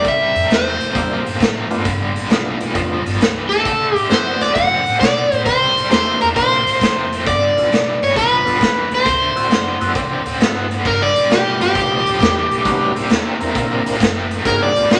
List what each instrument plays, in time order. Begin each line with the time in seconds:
0.04 upright bass C2, overdriven electric guitar C3 G3, kick, closed hi-hat
0.09 overdriven electric guitar E5
0.34 upright bass F2, overdriven electric guitar C3 G3, closed hi-hat
0.48 upright bass E2, overdriven electric guitar C3 A3, closed hi-hat
0.52 overdriven electric guitar C5, snare
0.78 upright bass C2, overdriven electric guitar C3 A3, closed hi-hat
0.93 upright bass E2, overdriven electric guitar C3 A#3, tonewheel organ G3 A#3 D4 E4, kick, closed hi-hat
1.24 upright bass G2, overdriven electric guitar C3 A#3, closed hi-hat
1.38 upright bass A2, overdriven electric guitar C3 A3, kick, closed hi-hat
1.42 snare
1.70 upright bass G2, overdriven electric guitar C3 A3, tonewheel organ A3 B3 D4 F4, closed hi-hat
1.85 upright bass G1, overdriven electric guitar G2 D3, kick, closed hi-hat
2.15 overdriven electric guitar G2 D3, closed hi-hat
2.30 upright bass B1, overdriven electric guitar G2 E3, tonewheel organ A3 B3 D4 F4, snare, closed hi-hat
2.60 upright bass B1, overdriven electric guitar G2 E3, closed hi-hat
2.75 upright bass F1, overdriven electric guitar G2 F3, kick, closed hi-hat
3.05 upright bass G1, overdriven electric guitar G2 F3, closed hi-hat
3.20 upright bass C#2, overdriven electric guitar G2 E3, snare, closed hi-hat
3.49 overdriven electric guitar G2 E3 A4, closed hi-hat
3.65 upright bass D2, overdriven electric guitar D3 A3, kick, closed hi-hat
3.95 upright bass G2, overdriven electric guitar D3 A3 G4, closed hi-hat
4.10 upright bass F#2, overdriven electric guitar D3 B3 C5, tonewheel organ A3 C4 E4 F#4, snare, closed hi-hat
4.40 upright bass D2, overdriven electric guitar D3 B3 D5, snare, closed hi-hat
4.55 upright bass F#2, overdriven electric guitar D3 C4 F#5, kick, closed hi-hat
4.86 upright bass A2, overdriven electric guitar D3 C4, closed hi-hat
5.00 upright bass B2, overdriven electric guitar D3 B3 D5, kick, snare, closed hi-hat
5.32 upright bass A2, overdriven electric guitar D3 B3, closed hi-hat
5.46 upright bass C2, overdriven electric guitar C3 G3 C5, kick, closed hi-hat
5.77 overdriven electric guitar C3 G3, closed hi-hat
5.89 upright bass E2, overdriven electric guitar C3 A3 C5, tonewheel organ A#3 D4 E4 G4, snare, closed hi-hat
6.21 upright bass E2, overdriven electric guitar C3 A3 A#4, closed hi-hat
6.35 upright bass A#1, overdriven electric guitar C3 A#3 C5, kick, closed hi-hat
6.66 upright bass C2, overdriven electric guitar C3 A#3, closed hi-hat
6.81 upright bass F2, overdriven electric guitar C3 A3, kick, snare, closed hi-hat
7.12 overdriven electric guitar C3 A3, closed hi-hat
7.26 upright bass G1, overdriven electric guitar G2 D3 D5, kick, closed hi-hat
7.56 upright bass C2, overdriven electric guitar G2 D3, tonewheel organ B3 D4 F4 A4, closed hi-hat
7.71 upright bass B1, overdriven electric guitar G2 E3, snare, closed hi-hat
8.02 upright bass G1, overdriven electric guitar G2 E3 C#5, closed hi-hat
8.16 upright bass B1, overdriven electric guitar G2 F3 B4, kick, closed hi-hat
8.45 upright bass D2, overdriven electric guitar G2 F3, tonewheel organ B3 D4 F4 A4, closed hi-hat
8.60 upright bass E2, overdriven electric guitar G2 E3, kick, snare, closed hi-hat
8.90 upright bass D2, overdriven electric guitar G2 E3, closed hi-hat
8.95 overdriven electric guitar C5
9.05 upright bass D2, overdriven electric guitar D3 A3, kick, closed hi-hat
9.35 overdriven electric guitar D3 A3, tonewheel organ C4 E4 F#4 A4, closed hi-hat
9.50 upright bass F#2, overdriven electric guitar D3 B3, snare, closed hi-hat
9.80 upright bass F#2, overdriven electric guitar D3 B3, tonewheel organ C4 E4 F#4 A4, closed hi-hat
9.95 upright bass C2, overdriven electric guitar D3 C4, kick, closed hi-hat
10.26 upright bass D2, overdriven electric guitar D3 C4, closed hi-hat
10.40 upright bass G2, overdriven electric guitar D3 B3, tonewheel organ C4 E4 F#4 A4, snare, closed hi-hat
10.71 overdriven electric guitar D3 B3, closed hi-hat
10.85 upright bass G1, overdriven electric guitar G2 D3 A#4, kick, crash
11.02 overdriven electric guitar D5
11.15 upright bass C2, overdriven electric guitar G2 D3, closed hi-hat
11.29 upright bass B1, overdriven electric guitar G2 E3 G4, tonewheel organ A3 B3 D4 F4 G4, snare, closed hi-hat
11.59 upright bass G1, overdriven electric guitar G2 E3 G4, closed hi-hat
11.75 upright bass B1, overdriven electric guitar G2 F3, kick, closed hi-hat
12.04 upright bass D2, overdriven electric guitar G2 F3, closed hi-hat
12.20 upright bass E2, overdriven electric guitar G2 E3, kick, snare, closed hi-hat
12.50 upright bass B1, overdriven electric guitar G2 E3, closed hi-hat
12.65 upright bass C2, overdriven electric guitar C3 G3, tonewheel organ A3 B3 C#4 D#4 F#4, kick, closed hi-hat
12.95 overdriven electric guitar C3 G3, tonewheel organ A#3 C4 D4 E4 G4, closed hi-hat
13.10 upright bass E2, overdriven electric guitar C3 A3, snare, closed hi-hat
13.40 upright bass E2, overdriven electric guitar C3 A3, tonewheel organ A#3 C4 D4 E4 A#4, closed hi-hat
13.55 upright bass A#1, overdriven electric guitar C3 A#3, kick, closed hi-hat
13.86 upright bass C2, overdriven electric guitar C3 A#3, closed hi-hat
14.00 upright bass F#1, overdriven electric guitar C3 A3, kick, snare, closed hi-hat
14.30 overdriven electric guitar C3 A3, closed hi-hat
14.45 upright bass G1, overdriven electric guitar G2 D3 A#4, tonewheel organ A#3 C4 D#4 F#4 G#4, kick, closed hi-hat
14.63 overdriven electric guitar D5
14.75 upright bass C2, overdriven electric guitar G2 D3, tonewheel organ A3 B3 D4 F4 G4, closed hi-hat
14.90 upright bass B1, overdriven electric guitar G2 E3 G4, snare, closed hi-hat